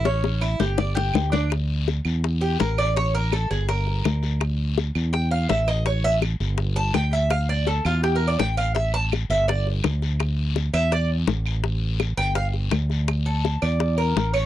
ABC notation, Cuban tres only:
X:1
M:4/4
L:1/8
Q:1/4=166
K:Gdor
V:1 name="Cuban tres"
^C2 E G d G2 D | z4 z G B d | ^c B A ^G B4 | z4 g f e _e |
^c e z3 a g e | f d A F (3G B d g f | e a z e d z3 | z3 e d z3 |
z3 g f z3 | [K:Aphr] z A2 d2 B2 ^c |]